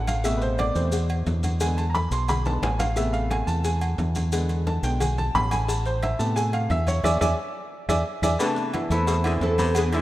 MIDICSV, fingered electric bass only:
0, 0, Header, 1, 2, 480
1, 0, Start_track
1, 0, Key_signature, 0, "minor"
1, 0, Tempo, 339751
1, 352, Time_signature, 4, 2, 24, 8
1, 14149, End_track
2, 0, Start_track
2, 0, Title_t, "Fingered electric bass"
2, 0, Program_c, 0, 33
2, 0, Note_on_c, 0, 33, 99
2, 991, Note_off_c, 0, 33, 0
2, 1064, Note_on_c, 0, 40, 99
2, 1738, Note_off_c, 0, 40, 0
2, 1787, Note_on_c, 0, 40, 98
2, 2910, Note_off_c, 0, 40, 0
2, 2978, Note_on_c, 0, 35, 97
2, 3655, Note_off_c, 0, 35, 0
2, 3706, Note_on_c, 0, 33, 96
2, 4829, Note_off_c, 0, 33, 0
2, 4902, Note_on_c, 0, 40, 98
2, 5577, Note_off_c, 0, 40, 0
2, 5627, Note_on_c, 0, 40, 95
2, 6750, Note_off_c, 0, 40, 0
2, 6820, Note_on_c, 0, 35, 103
2, 7496, Note_off_c, 0, 35, 0
2, 7550, Note_on_c, 0, 33, 100
2, 8671, Note_off_c, 0, 33, 0
2, 8751, Note_on_c, 0, 45, 107
2, 9422, Note_off_c, 0, 45, 0
2, 9464, Note_on_c, 0, 40, 103
2, 9914, Note_off_c, 0, 40, 0
2, 9941, Note_on_c, 0, 40, 103
2, 10125, Note_off_c, 0, 40, 0
2, 10184, Note_on_c, 0, 40, 85
2, 10367, Note_off_c, 0, 40, 0
2, 11139, Note_on_c, 0, 40, 88
2, 11324, Note_off_c, 0, 40, 0
2, 11614, Note_on_c, 0, 40, 92
2, 11801, Note_off_c, 0, 40, 0
2, 12573, Note_on_c, 0, 40, 107
2, 13251, Note_off_c, 0, 40, 0
2, 13292, Note_on_c, 0, 40, 98
2, 14149, Note_off_c, 0, 40, 0
2, 14149, End_track
0, 0, End_of_file